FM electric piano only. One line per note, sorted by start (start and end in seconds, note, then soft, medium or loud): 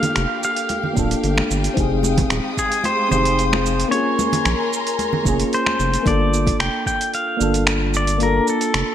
0.00 0.93 A#3 medium
0.00 0.95 D4 medium
0.00 0.97 F4 medium
0.00 0.99 A4 loud
0.93 1.72 A#3 medium
0.93 1.73 D4 medium
0.93 1.74 F4 medium
0.99 1.75 A4 loud
1.74 3.06 C4 loud
1.74 3.07 D#4 medium
1.74 3.08 G4 medium
1.80 3.09 G#4 loud
3.09 3.87 C4 medium
3.09 3.88 D#4 medium
3.13 3.89 G4 medium
3.13 3.90 G#4 loud
3.88 5.21 A#3 medium
3.88 5.22 C#4 medium
3.88 5.23 F4 medium
3.94 5.24 G#4 loud
5.23 6.01 A#3 medium
5.23 6.03 C#4 medium
5.27 6.03 F4 medium
5.27 6.04 G#4 loud
6.03 7.35 A#3 loud
6.03 7.36 D4 medium
6.07 7.37 F4 medium
6.07 7.38 A4 loud
7.37 8.16 A#3 loud
7.37 8.17 D4 medium
7.37 8.18 F4 medium
7.43 8.19 A4 loud
8.18 8.95 A#3 medium
8.18 8.95 D4 medium
8.18 8.95 F4 medium
8.24 8.95 A4 loud